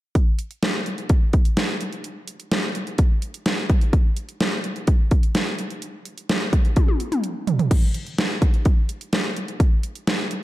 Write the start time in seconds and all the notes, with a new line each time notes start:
0.15 kick, closed hi-hat
0.39 closed hi-hat
0.51 closed hi-hat
0.63 snare, closed hi-hat
0.86 closed hi-hat
0.98 closed hi-hat
1.09 kick, closed hi-hat
1.33 kick, closed hi-hat
1.45 closed hi-hat
1.57 snare, closed hi-hat
1.81 closed hi-hat
1.93 closed hi-hat
2.04 closed hi-hat
2.28 closed hi-hat
2.40 closed hi-hat
2.51 snare, closed hi-hat
2.75 closed hi-hat
2.87 closed hi-hat
2.98 kick, closed hi-hat
3.22 closed hi-hat
3.34 closed hi-hat
3.46 snare, closed hi-hat
3.70 kick, closed hi-hat
3.81 closed hi-hat
3.93 kick, closed hi-hat
4.17 closed hi-hat
4.29 closed hi-hat
4.40 snare, closed hi-hat
4.64 closed hi-hat
4.76 closed hi-hat
4.87 kick, closed hi-hat
5.11 kick, closed hi-hat
5.23 closed hi-hat
5.35 snare, closed hi-hat
5.59 closed hi-hat
5.70 closed hi-hat
5.82 closed hi-hat
6.05 closed hi-hat
6.18 closed hi-hat
6.29 snare, closed hi-hat
6.53 kick, closed hi-hat
6.65 closed hi-hat
6.76 kick, closed hi-hat, high tom
6.88 high tom
7.00 closed hi-hat
7.12 closed hi-hat, mid tom
7.24 closed hi-hat
7.47 closed hi-hat, floor tom
7.59 closed hi-hat, floor tom
7.71 kick, closed hi-hat, crash
7.94 closed hi-hat
8.07 closed hi-hat
8.18 snare, closed hi-hat
8.42 kick, closed hi-hat
8.54 closed hi-hat
8.65 kick, closed hi-hat
8.89 closed hi-hat
9.01 closed hi-hat
9.13 snare, closed hi-hat
9.36 closed hi-hat
9.48 closed hi-hat
9.60 kick, closed hi-hat
9.83 closed hi-hat
9.95 closed hi-hat
10.07 snare, closed hi-hat
10.31 closed hi-hat